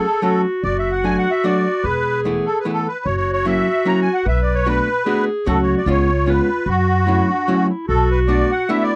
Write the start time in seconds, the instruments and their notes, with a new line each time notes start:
Already playing: clarinet G#4, accordion A4
0.22 hollow-body jazz guitar F#3 A3 C#4 F#4, clarinet F#4
0.64 upright bass F#1, clarinet F#4, accordion D5
0.79 accordion E5
0.92 accordion F#5
1.04 hollow-body jazz guitar F#3 A3 D4 F#4, accordion G#5
1.18 accordion F#5
1.31 accordion E5
1.44 hollow-body jazz guitar F#3 A3 D4 F#4, accordion D5
1.83 upright bass E1, clarinet G#4, accordion B4
2.25 hollow-body jazz guitar E3 A3 B3 E4
2.46 accordion A4
2.60 accordion B4
2.65 hollow-body jazz guitar E3 A3 B3 E4, accordion B4
2.73 accordion A4
2.88 accordion B4
3.04 upright bass F#1, clarinet F#4, accordion C#5
3.17 accordion C#5
3.33 accordion C#5
3.46 hollow-body jazz guitar F#3 A#3 C#4 E4, accordion E5
3.85 hollow-body jazz guitar F#3 A#3 C#4 E4, accordion A#5
4.02 accordion G#5
4.13 accordion F#5
4.26 upright bass B1, clarinet B4, accordion E5
4.42 accordion D5
4.55 accordion C#5
4.66 hollow-body jazz guitar A3 B3 D4 F#4, accordion B4
5.05 hollow-body jazz guitar A3 B3 D4 F#4, clarinet G#4
5.46 upright bass C#2, hollow-body jazz guitar F#3 A3 C#4 F#4, clarinet F#4, accordion A4
5.63 accordion C#5
5.77 accordion D5
5.86 upright bass C#2, hollow-body jazz guitar G#3 B3 C#4 F4, clarinet F4
5.91 accordion C#5
6.26 hollow-body jazz guitar G#3 B3 C#4 F4, accordion B4
6.66 upright bass F#2, clarinet F#4, accordion F#4
7.06 hollow-body jazz guitar F#3 A3 C#4 E4, clarinet E4
7.30 clarinet D4
7.48 hollow-body jazz guitar F#3 A3 C#4 E4, clarinet C#4
7.69 clarinet E4
7.87 upright bass B1, clarinet F#4, accordion A4
8.11 accordion B4
8.27 hollow-body jazz guitar A3 B3 D4 F#4, accordion D5
8.51 accordion F#5
8.69 hollow-body jazz guitar A3 B3 D4 F#4, clarinet E4, accordion E5
8.83 accordion D5